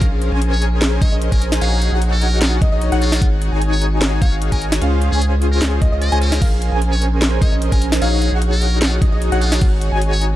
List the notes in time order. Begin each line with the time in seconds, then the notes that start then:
0.01 A#1 C#4 G#4 A#4 C5 F5, kick, closed hi-hat
0.22 closed hi-hat
0.32 A#1 C#4 G#4 A#4 C5 G#5
0.42 closed hi-hat
0.52 C#5
0.62 closed hi-hat
0.82 snare, closed hi-hat
1.01 A#1 C#4 G#4 A#4 C5 C#5 D#5, kick, closed hi-hat
1.12 A#1 C#4 G#4 A#4 C5 D#5
1.22 closed hi-hat
1.32 A#1 C#4 G#4 A#4 C5 G#5, kick, closed hi-hat
1.42 closed hi-hat
1.52 snare
1.61 A#1 D#4 F#4 G#4 C#5 F5, closed hi-hat
1.82 closed hi-hat
1.92 A#1 D#4 F#4 G#4 C#5 F#5
2.02 closed hi-hat
2.12 A#4
2.22 closed hi-hat
2.42 F4, snare, closed hi-hat
2.61 A#1 D#4 F#4 G#4 C#5 D#5, kick, closed hi-hat
2.72 A#1 D#4 F#4 G#4 C#5 D#5
2.82 closed hi-hat
2.92 A#1 D#4 F#4 G#4 C#5 F#5, closed hi-hat
3.02 F4, closed hi-hat
3.12 snare
3.21 G#1 D#4 F#4 G#4 C#5 F#5, kick, closed hi-hat
3.42 closed hi-hat
3.52 G#1 D#4 F#4 G#4 C#5 G#5
3.62 closed hi-hat
3.72 C#5
3.82 closed hi-hat
4.02 snare, closed hi-hat
4.21 G#1 D#4 F#4 G#4 C#5 F5, kick, closed hi-hat
4.32 G#1 D#4 F#4 G#4 C#5 F5
4.42 closed hi-hat
4.52 G#1 D#4 F#4 G#4 A#4 C#5 G#5, kick, closed hi-hat
4.62 closed hi-hat
4.72 snare
4.81 C#2 C#4 F4 G#4 C5 F5, closed hi-hat
5.02 closed hi-hat
5.12 C#2 C#4 F4 G#4 C5 G#5
5.22 closed hi-hat
5.42 closed hi-hat
5.52 A#4
5.62 snare, closed hi-hat
5.82 C#2 C#4 F4 G#4 C5 D#5, kick, closed hi-hat
5.92 C#2 C#4 F4 G#4 C5 D#5
6.02 D#5, closed hi-hat
6.12 C#2 C#4 F4 G#4 C5 G#5, closed hi-hat
6.22 A#4, closed hi-hat
6.32 snare
6.42 A#1 C#4 G#4 A#4 C5 F5, kick, closed hi-hat, crash
6.62 closed hi-hat
6.72 A#1 C#4 G#4 A#4 C5 G#5
6.82 closed hi-hat
6.92 C#5
7.02 closed hi-hat
7.22 snare, closed hi-hat
7.41 A#1 C#4 G#4 A#4 C5 C#5 D#5, kick, closed hi-hat
7.52 A#1 C#4 G#4 A#4 C5 D#5
7.62 closed hi-hat
7.72 A#1 C#4 G#4 A#4 C5 G#5, kick, closed hi-hat
7.82 closed hi-hat
7.92 snare
8.01 A#1 D#4 F#4 G#4 C#5 F5, closed hi-hat, crash
8.22 closed hi-hat
8.32 A#1 D#4 F#4 G#4 C#5 F#5
8.42 closed hi-hat
8.52 A#4
8.62 closed hi-hat
8.81 F4, snare, closed hi-hat
9.01 A#1 D#4 F#4 G#4 C#5 D#5, kick, closed hi-hat
9.12 A#1 D#4 F#4 G#4 C#5 D#5
9.22 closed hi-hat
9.32 A#1 D#4 F#4 G#4 C#5 F#5, closed hi-hat
9.41 F4, closed hi-hat
9.52 snare
9.61 G#1 D#4 F#4 G#4 C#5 F#5, kick, closed hi-hat, crash
9.81 closed hi-hat
9.92 G#1 D#4 F#4 G#4 C#5 G#5
10.02 closed hi-hat
10.12 C#5
10.21 closed hi-hat